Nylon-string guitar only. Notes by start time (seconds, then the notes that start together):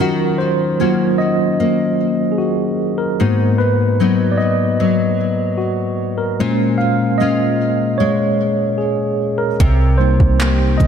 Already playing: A#3 D#4
0.00 D#3 F#4
0.80 A#3 C#4 F#4
1.60 A#3
3.20 G#2 D#4
4.00 F#3 B3 D#4
4.80 F#3
6.40 A#2 F4
7.20 G#3 C#4 F4
8.00 G#3
9.60 C3 G4
10.40 A#3 D#4 G4